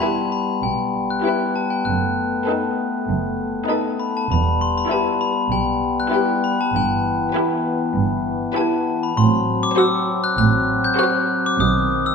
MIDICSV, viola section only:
0, 0, Header, 1, 2, 480
1, 0, Start_track
1, 0, Key_signature, 1, "minor"
1, 0, Tempo, 609137
1, 1467, Time_signature, 4, 2, 24, 8
1, 9573, End_track
2, 0, Start_track
2, 0, Title_t, "Viola section"
2, 0, Program_c, 0, 48
2, 13, Note_on_c, 0, 64, 39
2, 375, Note_off_c, 0, 64, 0
2, 981, Note_on_c, 0, 64, 40
2, 1341, Note_off_c, 0, 64, 0
2, 1956, Note_on_c, 0, 63, 40
2, 2311, Note_off_c, 0, 63, 0
2, 2900, Note_on_c, 0, 63, 42
2, 3264, Note_off_c, 0, 63, 0
2, 3857, Note_on_c, 0, 64, 46
2, 4220, Note_off_c, 0, 64, 0
2, 4824, Note_on_c, 0, 64, 44
2, 5186, Note_off_c, 0, 64, 0
2, 5790, Note_on_c, 0, 64, 49
2, 6146, Note_off_c, 0, 64, 0
2, 6743, Note_on_c, 0, 64, 49
2, 7101, Note_off_c, 0, 64, 0
2, 7702, Note_on_c, 0, 66, 54
2, 8060, Note_off_c, 0, 66, 0
2, 8654, Note_on_c, 0, 66, 51
2, 9012, Note_off_c, 0, 66, 0
2, 9573, End_track
0, 0, End_of_file